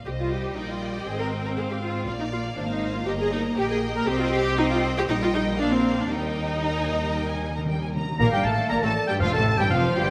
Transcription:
0.05 C2 G3 G4 C5 D#5
0.19 F4
0.31 G4
0.56 A#1 D#4 D5 G5
0.69 F4
0.95 G4
1.06 G#1 C4 G#4 C5
1.19 A#4
1.45 A#4
1.57 G#2 G#4 C5 F5
1.70 G4
1.82 F4
2.06 A#1 A#3 F4 D5 F5
2.20 D#4
2.32 F4
2.56 G#1 D4 C5 F5
2.69 D#4
2.95 F4
3.06 G1 A#3 G4 A#4 D#5 A#5
3.20 G#4
3.32 D#4
3.57 A#1 G4 A#4 D#5 G5
3.69 G#4
3.96 A#4
4.07 C2 C4 G4 C5 D#5 G5
4.22 F4
4.33 G4
4.57 C4 D#4 C5 D#5 G5
4.71 F4
4.97 G4
5.07 A#1 A#2 G3 D#4 D#5 G5
5.22 F4
5.34 D#4
5.57 A#3 D4 A#4 F5
5.72 C4
5.99 D4
6.10 D#2 D#3 G3 D#4 A#4 D#5 G5
6.18 D#3
6.26 D#3
6.34 D#3
6.42 D#3
6.50 D#3
6.57 D#3
6.63 D#3 A#5
6.77 D#3 G#5
6.88 D#3 A#5
6.96 D#3
7.04 D#3
7.10 D#3
7.15 D#3 G5
7.27 D#3 G#5
7.35 D#3
7.43 D#3
7.51 D#3
7.56 D#3 A#5
7.66 D#3 G5
7.73 D#3
7.81 D#3 G#5
7.88 D#3
7.94 D#3 A#5
8.03 D#3
8.11 D#3
8.18 A#1 A#2 A#3 A#4 F5 A#5
8.31 G2 G3 G4 G5
8.44 A1 A2 A3 A4 A5
8.69 A#1 A#2 A#3 A#4 D5 A#5
8.81 A1 A2 A3 A4 A5
9.07 G2 G3 G4 G5
9.18 F1 F2 F3 F4 A4 F5
9.32 A1 A2 A3 A4 A5
9.57 G2 G3 G4 G5
9.70 F1 F2 F3 F4 C5 F5
9.95 G1 G2 G3 G4 G5

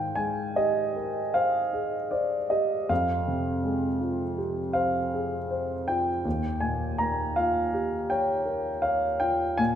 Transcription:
Already playing: G#2 D#3 F5 G5
0.15 G#3 G#5
0.56 G4 D#5
0.96 A#4
1.34 C5 F5
1.73 G#4
2.11 C5 D5
2.50 G4 D#5
2.89 F2 F5
3.28 C3
3.64 G#3
4.00 F4
4.38 G4
4.73 C5 F5
5.14 G#4
5.51 C5
5.88 F4 G5
6.25 D#2
6.60 A#2 G#5
6.98 A#3 A#5
7.36 F4 F5
7.74 G4
8.10 C#5 G5
8.46 A#4
8.82 C#5 F5
9.20 F4 G5
9.58 A#2 G#5

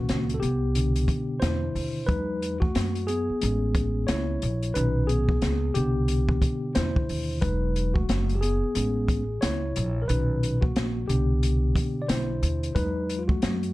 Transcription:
Already playing: A#2 D#3 A#3 C#4 F#4
0.09 C#2, snare, closed hi-hat
0.30 closed hi-hat
0.34 A4
0.40 C2 B3 G4, closed hi-hat
0.75 B2 D3 D4, closed hi-hat
0.96 closed hi-hat
1.08 kick, closed hi-hat
1.40 E2 E4 C5, snare, closed hi-hat
1.75 D#2, open hi-hat
2.07 E2 F#3 G#3 D#4 B4, kick, closed hi-hat
2.42 closed hi-hat
2.60 A3 F#4, kick
2.75 F#2, snare, closed hi-hat
2.95 closed hi-hat
3.07 B3 G#4, closed hi-hat
3.29 muted upright bass stroke
3.41 A1 G#3 B3 C#4, closed hi-hat
3.75 kick, closed hi-hat
4.07 C#2 E4 C#5, snare, closed hi-hat
4.42 A#1, closed hi-hat
4.63 closed hi-hat
4.74 B1 A#2 D#3 C#4 D#4 B4, closed hi-hat
5.07 B3 G#4, closed hi-hat
5.29 kick
5.42 C#2, snare, closed hi-hat
5.74 C2 B2 D3 B3 D4 G4, closed hi-hat
6.08 closed hi-hat
6.29 kick
6.42 kick, closed hi-hat
6.75 E2 E4 C5, snare, closed hi-hat
6.96 kick
7.09 D#2, open hi-hat
7.41 E1 F#3 G#3 D#4 B4, kick, closed hi-hat
7.76 closed hi-hat
7.94 A3 F#4, kick
8.09 F#1, snare, closed hi-hat
8.29 closed hi-hat
8.35 G4
8.41 B3 G#4, closed hi-hat
8.63 muted upright bass stroke
8.75 A1 G#3 B3 C#4, closed hi-hat
9.08 kick, closed hi-hat
9.41 C#2 E4 C#5, snare, closed hi-hat
9.76 A#1, closed hi-hat
10.02 A#4
10.08 B1 A#2 D#3 C#4 D#4 B4, closed hi-hat
10.43 closed hi-hat
10.61 A#3 F#4, kick
10.76 A#1, snare, closed hi-hat
11.08 C2 B2 D3 B3 D4 G4, closed hi-hat
11.43 closed hi-hat
11.76 kick, closed hi-hat
12.02 D5
12.08 B1 E4 C5, snare, closed hi-hat
12.43 D#2, closed hi-hat
12.63 closed hi-hat
12.75 E2 F#3 G#3 D#4 B4, kick, closed hi-hat
13.10 closed hi-hat
13.19 F4
13.28 A3 F#4, kick
13.42 F#2, snare, closed hi-hat
13.63 closed hi-hat

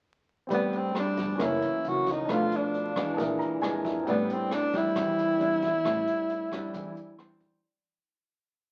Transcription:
0.47 A1 A2 G3 C4 G4 B4, kick, closed hi-hat
0.51 B3 D4 D5
0.73 closed hi-hat
0.77 C4
0.94 G3 C4 D4, cross-stick, closed hi-hat
0.99 D4
1.17 G1, kick, closed hi-hat
1.35 E3 C#4 F#4 A#4
1.39 F#1 F#2 A#3 C#4 E4 E5, kick, cross-stick, closed hi-hat
1.62 closed hi-hat
1.84 C#2, closed hi-hat
1.89 F#4
2.07 kick, closed hi-hat
2.12 D#4
2.25 B1 B2 F3 D4 A4 B4, kick, cross-stick, closed hi-hat
2.29 A3 D4 F4 F5
2.52 closed hi-hat
2.56 D4
2.74 closed hi-hat
2.96 F2 E3 G#3 D4, kick, cross-stick, closed hi-hat
3.14 A#1 D4 G#4
3.18 A#2 A#4 E5, kick, closed hi-hat
3.39 A#5, closed hi-hat
3.62 F2 E3 G#3 D4 G#5, cross-stick, closed hi-hat
3.85 E5, kick, closed hi-hat
4.04 A1 G3 C4 G4, kick, closed hi-hat
4.08 A2 B3 C4 D4 D5
4.30 C4, closed hi-hat
4.51 D4, cross-stick, closed hi-hat
4.73 E2 G3 C4 D4 E4, kick, closed hi-hat
4.95 E2 E3, kick, cross-stick, closed hi-hat
5.18 closed hi-hat
5.40 E2 G3 C4 D4, closed hi-hat
5.62 kick, closed hi-hat
5.85 A1 A2 G3 C4 D4, kick, cross-stick, closed hi-hat
6.07 closed hi-hat
6.30 closed hi-hat
6.52 E2 G3 C4 D4, kick, cross-stick, closed hi-hat
6.74 E2 E3, kick, closed hi-hat
6.97 closed hi-hat
7.18 E2 G3 C4 D4 C6, cross-stick, closed hi-hat
7.40 kick, closed hi-hat

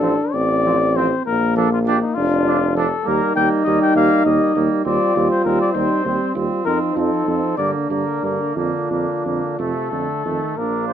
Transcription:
Already playing: A1 D4 A4
0.01 F3 C4
0.32 A1 C4 D5
0.65 F3 C4
0.95 F3 C4 C5
1.26 A#1 A#3 A#4
1.56 F3 D4 A4
1.73 F4
1.86 F3 D4 G4
2.02 D#4
2.14 F1 D4 F4
2.45 F3 D4
2.75 F3 D4 A4
3.04 D#2 G3 A#3 D#4 A#4
3.36 D#2 G3 A#3 G5
3.64 D#2 G3 A#3 D#5
3.82 G5
3.95 D#2 G3 A#3 F5
4.25 D#2 G3 A#3 D#5
4.55 D#2 G3 A#3
4.85 D#2 G3 C4 F4 D5
5.15 D#2 G3 C4
5.31 C5
5.45 D#2 G3 C4 A#4
5.61 D5
5.73 D#2 G3 C4 D#4 C5
6.04 D#2 G3 C4
6.35 D#2 G3 C4 F4
6.64 F2 F3 C4 D#4 A#4
6.95 F2 F3 C4 A4
7.26 F2 F3 C4
7.57 G2 D3 A#3 D4 D5
7.89 G2 D3 A#3 A#4
8.23 G2 D3 A#3
8.56 F2 D3 A#3 D4 F4
8.90 F2 D3 A#3
9.25 F2 D3 A#3
9.58 F2 C3 A3 A4
9.91 F2 D3 A3
10.25 F2 D#3 A3
10.57 A#1 A#3 D4 A#4
10.88 C5

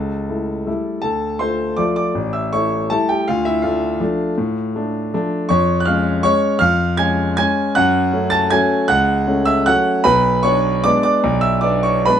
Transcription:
Already playing: C#2 A4 A5
0.29 A3 E4
0.66 G3 A3 E4
1.02 D2 A4 A5
1.39 A3 F4 C5 C6
1.77 F3 A3 F4 D5 D6
1.96 D5 D6
2.15 A1
2.33 E5 E6
2.53 A3 E4 C#5 C#6
2.90 G3 A3 E4 A4 A5
3.09 G4 G5
3.28 D2 F4 F5
3.45 E4 E5
3.62 A3 D4 F4 F5
4.00 F3 A3 D4
4.38 A2
4.75 A3 D4
5.14 F3 A3 D4
5.49 F2 C#5 C#6
5.80 F#6
5.85 G#3 C#4 F5 F6
6.23 G#3 C#4 C#5 C#6
6.59 F2 F5 F6
6.97 G#3 C#4 G#5 G#6
7.37 G#3 C#4 G#5 G#6
7.75 F#2 F#5 F#6
8.13 A3 C#4
8.30 A5 A6
8.50 F#3 A3 C#4 G#5 G#6
8.88 C#2 F#5 F#6
9.27 A3 C#4
9.45 E5 E6
9.66 F#3 A3 C#4 F#5 F#6
10.04 B1 B4 B5
10.43 B3 D4 C#5 C#6
10.84 G#3 B3 D4 D5 D6
11.03 D5 D6
11.24 B1
11.41 E5 E6
11.61 B3 D4 D5 D6
11.83 C#5 C#6
12.05 G#3 B3 D4 B4 B5

